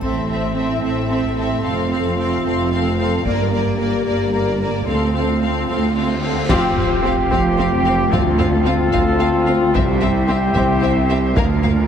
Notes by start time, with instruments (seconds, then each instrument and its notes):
0.00 double bass section A1, cello section A2, viola section C4, french horn section C4 E4, violin section A4 E5, taiko, triangle
0.27 viola section C4, violin section A4 E5
0.53 viola section C4, violin section A4 E5
0.81 double bass section A1, cello section A2, viola section C4, violin section A4 E5
1.08 viola section C4, violin section A4 E5
1.22 taiko
1.35 viola section C4, violin section A4 E5
1.62 double bass section F1, cello section F2, french horn section A3 F4, viola section C4, violin section A4 F5
1.89 viola section C4, violin section A4 F5
2.17 viola section C4, violin section A4 F5
2.44 double bass section F1, cello section F2, viola section C4, violin section A4 F5
2.71 viola section C4, violin section A4 F5
2.98 viola section C4, violin section A4 F5
3.24 double bass section G1, cello section G2, viola section A#3, french horn section A#3 G4, violin section A#4 D5, taiko
3.52 viola section A#3, violin section A#4 D5
3.79 viola section A#3, violin section A#4 D5
4.06 double bass section G1, cello section G2, viola section A#3, violin section A#4 D5
4.33 viola section A#3, violin section A#4 D5
4.60 viola section A#3, violin section A#4 D5
4.87 double bass section D2, cello section D2, viola section C4, french horn section C4 F4, violin section A4 F5, cymbal swell
5.14 viola section C4, violin section A4 F5
5.41 viola section C4, violin section A4 F5
5.68 cello section D2, double bass section D2, viola section C4, violin section A4 F5
5.94 viola section C4, violin section A4 F5
6.22 viola section C4, violin section A4 F5
6.49 double bass section F1, cello section F2, viola section C4, woodwind section C4 F4 G4 F5, french horn section C4 F4, violin section G4 F5, trumpet section G4, concert bass drum, taiko, crash, sub drop
6.77 viola section C4, violin section G4 F5, taiko low-mid
7.04 viola section C4, violin section G4 F5
7.30 double bass section F1, cello section F2, viola section C4, violin section G4 F5, taiko
7.57 viola section C4, violin section G4 F5
7.85 viola section C4, violin section G4 F5
8.10 cello section D2, double bass section D2, viola section C4, violin section F4 F5, woodwind section A4, trumpet section A4, taiko
8.38 viola section C4, violin section F4 F5, taiko low-mid
8.65 viola section C4, violin section F4 F5
8.92 double bass section D2, cello section D2, viola section C4, violin section F4 F5, taiko
9.20 viola section C4, violin section F4 F5
9.46 viola section C4, violin section F4 F5
9.73 double bass section C2, cello section C2, viola section C4, french horn section C4 E4, woodwind section G4 C5 E5, violin section G4 E5, trumpet section G4, taiko
10.01 viola section C4, violin section G4 E5, taiko low-mid
10.27 viola section C4, violin section G4 E5
10.55 cello section C2, double bass section C2, viola section C4, violin section G4 E5, taiko
10.81 viola section C4, violin section G4 E5
11.09 viola section C4, violin section G4 E5
11.34 cello section D2, double bass section D2, french horn section A#3 F4, viola section A#3, woodwind section D4 F4 A#4 F5, violin section A#4 F5, trumpet section A#4, taiko
11.63 viola section A#3, violin section A#4 F5, taiko low-mid